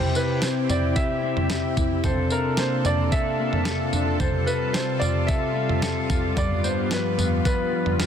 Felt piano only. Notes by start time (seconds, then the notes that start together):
Already playing: C5
0.16 B4
0.43 C5
0.70 D5
0.96 E5
2.05 C5
2.32 A#4
2.58 C5
2.86 D5
3.12 E5
4.20 C5
4.47 B4
4.73 C5
5.00 D5
5.27 E5
6.38 D5
6.64 C5
6.92 B4
7.45 B4